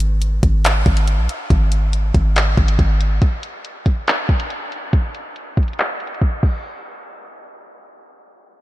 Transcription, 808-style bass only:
0.00 0.40 G#1 loud
0.43 0.84 G#1 loud
0.86 1.20 G#1 loud
1.18 1.28 A#1 loud
1.50 2.12 G#1 loud
2.15 2.56 G#1 loud
2.57 2.78 G#1 loud
2.79 3.20 G#1 loud

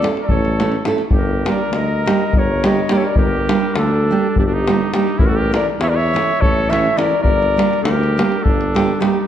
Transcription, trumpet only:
0.22 0.29 A#4 medium
0.27 0.84 A4 medium
1.14 1.48 G4 medium
1.47 1.74 A#4 medium
1.74 2.37 A#4 medium
2.37 2.68 A#4 medium
2.66 2.94 C#5 medium
2.93 2.99 A#4 medium
2.98 3.05 A4 medium
3.03 3.16 A#4 medium
3.18 3.77 G4 medium
3.76 4.37 D4 medium
4.39 4.45 D4 medium
4.45 4.55 D4 medium
4.54 4.94 D#4 medium
4.96 5.19 D#4 medium
5.18 5.28 E4 medium
5.27 5.38 F#4 medium
5.36 5.54 G4 medium
5.55 5.66 A#4 medium
5.82 5.91 C#5 medium
5.90 5.97 A#4 medium
5.95 6.42 C#5 medium
6.41 6.73 A4 medium
6.71 6.99 C#5 medium
6.98 7.22 A#4 medium
7.23 7.80 A#4 medium
7.84 8.45 G4 medium
8.43 9.03 D4 medium
9.01 9.27 D#4 medium

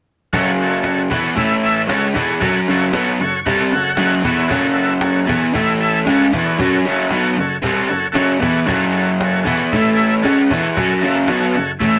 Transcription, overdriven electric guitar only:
0.33 1.11 F#2 medium
0.33 1.10 C#3 medium
0.33 1.11 F#3 loud
1.10 1.35 E3 loud
1.10 1.36 B3 medium
1.10 1.37 E4 medium
1.36 1.87 A2 medium
1.36 1.88 E3 medium
1.36 1.89 A3 medium
1.87 2.14 C#3 medium
1.87 2.14 G#3 medium
1.87 2.15 C#4 medium
2.14 2.40 E3 medium
2.14 2.41 B3 medium
2.14 2.41 E4 medium
2.40 2.67 F#3 medium
2.40 2.67 C#4 loud
2.40 2.68 F#4 medium
2.68 2.93 F#2 medium
2.68 2.92 C#3 loud
2.68 2.93 F#3 loud
2.93 3.19 B2 medium
2.93 3.20 F#3 medium
2.93 3.20 B3 loud
3.19 3.41 F#2 medium
3.19 3.42 C#3 medium
3.46 3.72 C3 medium
3.46 3.72 G3 medium
3.46 3.72 C4 loud
3.72 3.93 F#2 medium
3.72 3.93 C#3 medium
3.98 4.24 F#2 loud
3.98 4.22 C#3 loud
3.98 4.24 F#3 loud
4.23 4.49 E3 medium
4.23 4.50 B3 medium
4.23 4.50 E4 medium
4.49 5.27 F#2 medium
4.49 5.27 C#3 loud
4.49 5.27 F#3 loud
5.27 5.53 E3 medium
5.27 5.54 B3 loud
5.27 5.54 E4 medium
5.54 6.05 A2 loud
5.54 6.06 E3 medium
5.54 6.07 A3 loud
6.05 6.32 C#3 medium
6.05 6.32 G#3 medium
6.05 6.33 C#4 medium
6.33 6.58 E3 medium
6.33 6.59 B3 medium
6.33 6.59 E4 medium
6.59 6.85 F#3 medium
6.59 6.85 C#4 medium
6.59 6.86 F#4 loud
6.85 7.11 F#2 medium
6.85 7.11 C#3 medium
6.85 7.11 F#3 loud
7.12 7.36 B2 medium
7.12 7.37 F#3 loud
7.12 7.38 B3 loud
7.36 7.58 F#2 medium
7.36 7.58 C#3 medium
7.62 7.88 C3 medium
7.62 7.89 G3 medium
7.62 7.89 C4 loud
7.89 8.11 F#2 medium
7.89 8.11 C#3 medium
8.14 8.41 F#2 medium
8.14 8.40 C#3 medium
8.14 8.40 F#3 medium
8.40 8.67 E3 medium
8.40 8.67 B3 medium
8.40 8.68 E4 medium
8.66 9.45 F#2 medium
8.66 9.44 C#3 loud
8.66 9.45 F#3 loud
9.45 9.71 E3 medium
9.45 9.71 B3 loud
9.45 9.72 E4 loud
9.73 10.24 A2 medium
9.73 10.25 E3 medium
9.73 10.25 A3 loud
10.25 10.50 C#3 medium
10.25 10.51 G#3 medium
10.25 10.51 C#4 medium
10.52 10.76 E3 medium
10.52 10.77 B3 medium
10.52 10.78 E4 medium
10.77 11.02 F#3 medium
10.77 11.03 C#4 loud
10.77 11.03 F#4 loud
11.01 11.28 F#2 medium
11.01 11.28 C#3 medium
11.01 11.28 F#3 loud
11.29 11.54 B2 medium
11.29 11.55 F#3 loud
11.29 11.55 B3 loud
11.55 11.76 F#2 medium
11.55 11.76 C#3 medium
11.80 11.99 A2 medium
11.80 11.99 E3 loud
11.80 11.99 A3 medium

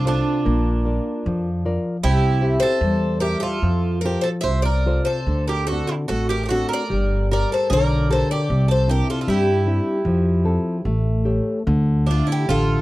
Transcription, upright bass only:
0.00 0.19 C2 medium
0.46 0.98 A#1 medium
1.26 1.76 F2 medium
2.04 2.54 C2 medium
2.81 3.34 E2 loud
3.62 4.16 F2 medium
4.44 4.98 C2 medium
5.26 5.80 D2 medium
6.09 6.62 A1 medium
6.91 7.43 G1 medium
7.71 8.22 B1 medium
8.50 9.00 C2 medium
9.28 9.78 G2 medium
10.05 10.56 F2 medium
10.85 11.38 A1 medium
11.67 12.20 D2 loud
12.49 12.75 A1 medium

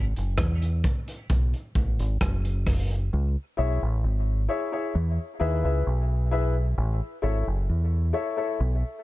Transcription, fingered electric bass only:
0.00 0.15 G#1 loud
0.17 0.38 F#1 medium
0.39 0.82 E2 loud
1.30 1.52 B1 loud
1.76 1.98 A1 loud
2.00 2.20 G#1 medium
2.21 3.08 F#1 medium
3.13 3.35 C#2 loud
3.59 3.81 B1 medium
3.83 4.03 A1 medium
4.04 4.47 G#1 medium
4.95 5.17 E2 loud
5.41 5.63 D#2 medium
5.65 5.85 C#2 medium
5.87 6.73 B1 medium
6.78 7.00 A1 loud
7.23 7.45 G#1 loud
7.47 7.67 F#1 medium
7.69 8.12 E2 loud
8.60 8.82 B1 loud

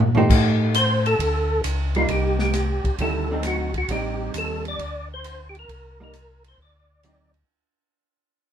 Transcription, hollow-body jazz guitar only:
0.17 0.73 A3 medium
0.17 0.73 D#4 medium
0.17 0.73 G4 medium
0.17 0.73 C5 medium
1.96 2.52 G3 medium
1.96 2.53 A#3 medium
1.96 2.53 D#4 medium
3.01 3.28 D#3 soft
3.01 3.28 G3 medium
3.01 3.28 C#4 soft
3.01 3.28 E4 medium
3.31 3.69 D3 soft
3.31 3.69 F#3 soft
3.31 3.70 C4 soft
3.31 3.70 D#4 medium
3.91 4.80 G3 soft
3.91 4.80 C4 soft
3.91 4.80 D#4 medium
6.00 6.13 G3 medium
6.00 6.13 A#3 medium
6.00 6.14 D#4 medium
7.04 7.31 D3 medium
7.04 7.31 F#3 medium
7.04 7.32 C4 medium
7.04 7.32 D#4 medium

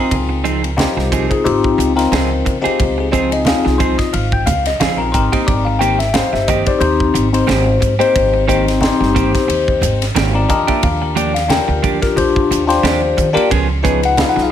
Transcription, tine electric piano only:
0.00 0.69 C4 medium
0.00 0.69 D#4 medium
0.00 0.70 F4 medium
0.00 0.70 G#4 medium
0.00 1.61 A#4 medium
0.77 1.25 C4 medium
0.77 1.25 D#4 medium
0.77 1.25 F4 medium
0.77 1.25 G4 loud
1.30 1.43 C4 medium
1.30 1.43 D#4 medium
1.30 1.44 F4 medium
1.30 1.44 G#4 medium
1.45 1.92 C4 medium
1.45 1.92 D#4 medium
1.45 1.92 F4 medium
1.45 1.92 G4 medium
1.96 2.57 C4 medium
1.96 2.57 D#4 medium
1.96 2.57 F4 medium
1.96 2.57 A#4 loud
2.61 3.07 C4 medium
2.61 3.07 D#4 medium
2.61 3.08 F4 medium
2.61 3.08 G4 loud
3.00 3.11 G#4 medium
3.11 3.43 C4 medium
3.11 3.43 D#4 medium
3.11 3.43 F4 medium
3.11 3.43 G#4 medium
3.11 3.31 C5 medium
3.33 3.47 D#5 medium
3.46 4.69 C4 medium
3.46 4.69 D#4 medium
3.46 4.69 F4 medium
3.46 3.63 G#4 medium
3.46 3.65 F5 medium
3.64 3.79 G#4 soft
3.78 3.97 C5 medium
3.98 4.13 D#5 medium
4.13 4.31 F5 medium
4.33 4.47 G5 medium
4.46 4.64 F5 medium
4.67 4.80 D#5 medium
4.80 4.98 F5 medium
4.97 5.13 C4 medium
4.97 5.13 D#4 medium
4.97 5.13 F4 medium
4.97 5.14 G#4 medium
4.97 5.13 A#4 medium
5.12 6.06 C4 medium
5.12 6.06 D#4 medium
5.12 6.06 G4 medium
5.12 6.07 A#4 medium
5.12 5.31 C5 medium
5.32 5.47 D#5 medium
5.47 5.65 D5 medium
5.65 5.80 F5 medium
5.79 5.98 G5 loud
5.99 6.13 E5 medium
6.14 6.61 C4 medium
6.14 6.61 D#4 medium
6.14 6.62 G4 medium
6.14 6.62 C5 medium
6.14 6.32 F5 medium
6.33 6.47 E5 medium
6.48 6.66 D#5 medium
6.66 6.78 C4 medium
6.66 6.79 D#4 medium
6.66 6.79 G4 medium
6.66 6.79 C5 medium
6.66 6.81 D5 medium
6.79 7.27 C4 medium
6.79 7.28 D#4 medium
6.79 7.28 G4 medium
6.79 7.28 C5 medium
7.33 7.93 C4 medium
7.33 7.93 D#4 medium
7.33 7.94 G4 medium
7.33 7.94 C5 medium
8.00 8.44 C4 medium
8.00 8.44 D#4 medium
8.00 8.44 G4 medium
8.00 8.45 C5 loud
8.48 8.79 C4 medium
8.48 8.79 D#4 medium
8.48 8.80 G4 medium
8.48 8.79 C5 medium
8.81 10.05 C4 medium
8.81 10.05 D#4 medium
8.81 10.05 G4 medium
8.81 10.05 C5 loud
10.34 10.49 C4 medium
10.34 10.49 D#4 medium
10.34 10.49 G4 medium
10.34 10.49 A#4 medium
10.34 10.49 D5 medium
10.49 11.42 D4 medium
10.49 11.42 F4 medium
10.49 11.42 G4 medium
10.49 11.01 A#4 medium
10.49 10.68 D#5 medium
10.69 10.83 E5 medium
10.83 11.01 F5 medium
11.02 11.16 A#4 soft
11.17 11.35 D5 medium
11.34 11.49 F5 medium
11.48 11.96 D4 medium
11.48 11.97 F4 medium
11.48 11.97 G4 medium
11.48 11.97 A#4 medium
11.48 12.80 G5 medium
12.01 12.15 D4 medium
12.01 12.15 F4 medium
12.01 12.15 G4 medium
12.01 12.16 A#4 medium
12.16 12.64 D4 medium
12.16 12.64 F4 medium
12.16 12.64 G4 medium
12.16 12.64 C5 medium
12.67 13.28 D4 medium
12.67 13.29 F4 medium
12.67 13.29 G4 medium
12.67 13.29 C5 loud
13.33 13.49 D4 loud
13.33 13.50 F4 loud
13.33 13.50 G4 medium
13.33 13.50 A#4 loud
13.83 14.14 D#4 medium
13.83 14.14 F4 medium
13.83 14.15 G#4 medium
13.83 14.15 B4 medium
14.05 14.19 F#5 medium
14.17 14.52 D#4 medium
14.17 14.52 F4 medium
14.17 14.52 G#4 medium
14.17 14.52 B4 medium
14.17 14.30 F5 medium
14.29 14.40 F#5 medium
14.43 14.52 F5 medium

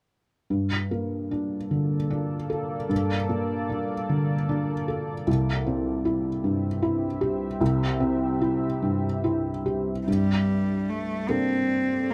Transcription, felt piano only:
0.50 2.87 G2 soft
0.91 1.55 A#3 soft
1.31 1.95 D4 soft
1.71 2.35 D3 soft
2.10 2.75 D4 soft
2.50 3.14 A4 soft
2.89 5.23 G2 soft
3.29 3.94 A#3 soft
3.70 4.33 D4 soft
4.09 4.72 D3 soft
4.49 5.12 D4 soft
4.88 5.28 A4 soft
5.27 7.56 C2 soft
5.66 6.28 C4 soft
6.05 6.67 E4 soft
6.44 7.06 G2 soft
6.82 7.45 E4 soft
7.21 7.84 G4 soft
7.61 10.03 C2 soft
8.00 8.65 C4 soft
8.41 9.06 E4 soft
8.82 9.48 G2 soft
9.24 9.91 E4 soft
9.66 10.08 G4 soft
10.07 11.25 G2 soft
11.29 12.14 A#3 soft
11.29 12.14 D4 soft
11.29 12.14 A4 soft

